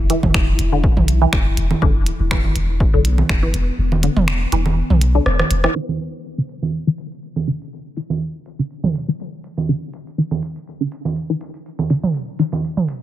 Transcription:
0.00 0.16 E1 loud
0.00 5.76 E3 medium
0.00 1.85 E4 medium
0.10 0.18 E3 medium
0.10 closed hi-hat medium
0.23 0.53 E1 medium
0.23 kick medium
0.23 mid tom medium
0.23 high conga medium
0.34 finger snap medium
0.34 kick loud
0.59 0.89 E1 loud
0.59 closed hi-hat medium
0.72 0.79 D3 medium
0.84 kick loud
0.97 1.26 B1 medium
0.97 mid tom medium
0.97 high conga medium
1.08 closed hi-hat medium
1.22 1.28 E3 medium
1.33 1.49 E1 medium
1.33 finger snap medium
1.33 kick loud
1.57 1.74 E1 loud
1.57 closed hi-hat medium
1.71 high conga medium
1.82 2.12 E1 medium
1.82 1.90 D3 medium
1.82 5.78 B3 medium
1.82 kick loud
2.06 closed hi-hat medium
2.20 2.49 E1 medium
2.31 2.39 E3 medium
2.31 finger snap medium
2.31 kick loud
2.44 high conga medium
2.56 2.86 E1 loud
2.56 closed hi-hat medium
2.80 kick loud
2.94 3.23 B1 medium
2.94 3.00 D3 medium
3.05 closed hi-hat medium
3.18 high conga medium
3.29 3.46 E1 medium
3.29 finger snap medium
3.29 kick loud
3.43 3.49 E3 medium
3.54 3.71 E1 loud
3.54 closed hi-hat medium
3.79 4.09 E1 loud
3.92 high conga medium
4.03 4.11 D3 medium
4.03 closed hi-hat medium
4.17 4.46 E1 medium
4.17 mid tom medium
4.28 finger snap medium
4.52 4.83 E1 loud
4.52 4.60 E3 medium
4.52 closed hi-hat medium
4.66 high conga medium
4.90 5.20 B1 medium
4.90 mid tom medium
5.01 closed hi-hat medium
5.15 5.22 D3 medium
5.26 5.43 E1 medium
5.26 cross-stick medium
5.39 cross-stick medium
5.39 high conga medium
5.51 5.67 E1 loud
5.51 closed hi-hat medium
5.64 5.71 E3 medium
5.64 cross-stick medium
5.75 5.83 E3 medium
5.75 crash medium
5.89 high conga medium
5.99 closed hi-hat medium
5.99 maracas medium
6.13 maracas soft
6.25 maracas soft
6.38 6.44 D3 medium
6.49 closed hi-hat medium
6.49 maracas medium
6.62 high conga medium
6.62 maracas soft
6.74 maracas soft
6.87 6.94 E3 medium
6.98 closed hi-hat medium
6.98 maracas loud
7.12 maracas soft
7.23 maracas soft
7.36 high conga medium
7.47 7.55 D3 medium
7.47 closed hi-hat medium
7.47 maracas medium
7.61 maracas medium
7.73 maracas soft
7.97 8.04 E3 medium
7.97 closed hi-hat medium
7.97 maracas loud
8.10 high conga medium
8.10 maracas soft
8.21 maracas soft
8.46 closed hi-hat medium
8.46 maracas loud
8.59 8.66 D3 medium
8.59 maracas soft
8.70 maracas soft
8.84 mid tom medium
8.84 high conga medium
8.95 closed hi-hat loud
8.95 maracas loud
9.08 9.15 E3 medium
9.08 maracas medium
9.20 maracas soft
9.44 closed hi-hat medium
9.44 maracas medium
9.57 high conga medium
9.57 maracas soft
9.68 9.77 D3 medium
9.68 maracas soft
9.93 closed hi-hat medium
9.93 maracas loud
10.07 maracas medium
10.18 10.26 E3 medium
10.18 maracas soft
10.31 high conga medium
10.42 closed hi-hat medium
10.42 maracas medium
10.56 maracas soft
10.67 maracas soft
10.81 10.87 D3 medium
10.92 closed hi-hat loud
10.92 maracas medium
11.05 high conga medium
11.05 maracas soft
11.16 maracas soft
11.30 11.36 E3 medium
11.41 closed hi-hat medium
11.41 maracas medium
11.54 maracas soft
11.66 maracas soft
11.79 high conga medium
11.90 11.98 D3 medium
11.90 closed hi-hat medium
11.90 maracas medium
12.04 mid tom medium
12.04 maracas medium
12.14 maracas soft
12.39 12.47 E3 medium
12.39 closed hi-hat loud
12.39 maracas loud
12.52 high conga medium
12.52 maracas medium
12.64 maracas soft
12.77 mid tom medium
12.88 closed hi-hat medium
12.88 maracas medium

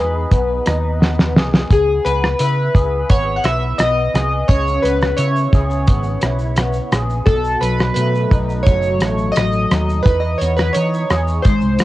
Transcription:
0.00 0.24 E2 medium
0.00 0.31 B3 medium
0.00 0.65 D#4 medium
0.00 1.36 G#4 medium
0.00 1.32 B4 medium
0.31 0.59 B1 medium
0.31 1.00 B3 medium
0.31 kick medium
0.31 closed hi-hat medium
0.66 1.36 D#2 medium
0.66 1.77 D#4 medium
0.66 cross-stick medium
0.66 closed hi-hat medium
1.00 2.05 B3 medium
1.00 snare medium
1.19 snare medium
1.36 1.64 C2 medium
1.36 2.75 G#4 medium
1.36 snare medium
1.54 snare medium
1.71 1.98 C#2 medium
1.71 2.07 G#4 medium
1.71 kick loud
1.71 closed hi-hat medium
2.05 2.33 C#2 medium
2.05 3.09 B3 medium
2.05 2.39 B4 medium
2.05 closed hi-hat medium
2.24 cross-stick medium
2.39 2.68 C#3 medium
2.39 3.44 E4 medium
2.39 3.12 B4 medium
2.39 closed hi-hat medium
2.75 3.03 C#2 medium
2.75 4.13 G#4 medium
2.75 kick medium
2.75 closed hi-hat medium
3.09 3.38 G#1 medium
3.09 3.80 B3 medium
3.09 3.38 C#5 medium
3.09 kick medium
3.09 closed hi-hat medium
3.36 3.44 F#5 medium
3.44 3.72 B1 medium
3.44 5.18 E4 medium
3.44 3.80 E5 medium
3.44 cross-stick medium
3.44 closed hi-hat soft
3.78 4.07 B1 medium
3.78 4.84 B3 medium
3.78 4.51 D#5 loud
3.78 cross-stick medium
3.78 closed hi-hat medium
4.14 4.42 C2 medium
4.14 5.53 G#4 medium
4.14 cross-stick medium
4.14 closed hi-hat medium
4.48 4.77 C#2 medium
4.48 7.26 C#3 medium
4.48 4.84 C#5 loud
4.48 kick loud
4.48 closed hi-hat medium
4.48 shaker medium
4.67 shaker medium
4.82 5.12 C#2 medium
4.82 5.89 B3 medium
4.82 5.19 B4 medium
4.82 closed hi-hat medium
4.82 shaker medium
5.01 cross-stick medium
5.01 shaker soft
5.17 5.46 C#3 loud
5.17 6.23 E4 medium
5.17 6.88 C#5 medium
5.17 closed hi-hat medium
5.17 shaker medium
5.36 shaker medium
5.53 5.89 C#2 medium
5.53 6.91 G#4 medium
5.53 kick medium
5.53 closed hi-hat soft
5.53 shaker soft
5.70 shaker soft
5.87 6.16 G#1 medium
5.87 6.58 B3 medium
5.87 kick medium
5.87 closed hi-hat medium
5.87 shaker medium
6.03 shaker medium
6.21 6.79 B1 medium
6.21 7.35 E4 medium
6.21 cross-stick medium
6.21 closed hi-hat medium
6.21 shaker medium
6.39 shaker soft
6.56 7.96 B3 medium
6.56 cross-stick medium
6.56 closed hi-hat medium
6.56 shaker medium
6.73 shaker soft
6.92 7.20 A#1 medium
6.92 7.34 G#4 medium
6.92 cross-stick medium
6.92 closed hi-hat medium
6.92 shaker medium
7.10 shaker soft
7.26 7.55 B1 medium
7.26 10.06 B2 medium
7.26 7.63 A4 medium
7.26 kick loud
7.26 closed hi-hat medium
7.26 shaker medium
7.45 shaker medium
7.61 7.90 B1 medium
7.61 8.65 F#3 medium
7.61 7.93 B4 medium
7.61 closed hi-hat medium
7.61 shaker medium
7.79 cross-stick medium
7.79 shaker soft
7.94 8.24 B2 medium
7.94 9.00 A3 medium
7.94 8.67 B4 medium
7.94 closed hi-hat medium
7.94 shaker medium
8.15 shaker soft
8.30 8.68 B1 medium
8.30 9.72 D#4 medium
8.30 kick medium
8.30 closed hi-hat medium
8.30 shaker soft
8.50 shaker medium
8.63 9.02 F#1 medium
8.63 9.36 F#3 medium
8.63 9.37 C#5 medium
8.63 kick medium
8.63 closed hi-hat medium
8.63 shaker medium
8.83 shaker medium
9.00 9.30 A1 medium
9.00 10.13 A3 medium
9.00 cross-stick medium
9.00 closed hi-hat medium
9.00 shaker medium
9.18 shaker soft
9.32 10.06 D#5 medium
9.36 9.64 A1 medium
9.36 10.06 F#3 medium
9.36 cross-stick medium
9.36 closed hi-hat medium
9.36 shaker medium
9.52 shaker soft
9.71 9.99 D#2 medium
9.71 10.76 D#4 medium
9.71 cross-stick medium
9.71 closed hi-hat medium
9.71 shaker medium
9.89 shaker soft
10.03 10.34 E2 medium
10.03 11.53 E3 medium
10.03 10.22 B4 medium
10.03 kick loud
10.03 closed hi-hat medium
10.03 shaker medium
10.20 10.40 D#5 medium
10.20 shaker medium
10.38 10.69 E2 medium
10.38 11.53 B3 medium
10.38 10.46 C#5 medium
10.38 closed hi-hat medium
10.38 shaker soft
10.56 10.75 B4 medium
10.56 cross-stick medium
10.56 shaker soft
10.73 11.04 E3 medium
10.73 11.84 D#4 medium
10.73 11.46 C#5 medium
10.73 closed hi-hat medium
10.73 shaker medium
10.94 shaker soft
11.10 11.38 E2 medium
11.10 11.84 G#4 medium
11.10 cross-stick medium
11.10 closed hi-hat soft
11.10 shaker medium
11.28 shaker medium
11.42 11.59 G#1 loud
11.42 11.84 G#2 medium
11.42 11.84 C5 medium
11.42 kick medium
11.42 closed hi-hat medium
11.42 shaker medium
11.61 11.76 C2 medium
11.61 shaker medium
11.79 11.84 C4 medium
11.79 cross-stick medium
11.79 closed hi-hat medium
11.79 shaker soft

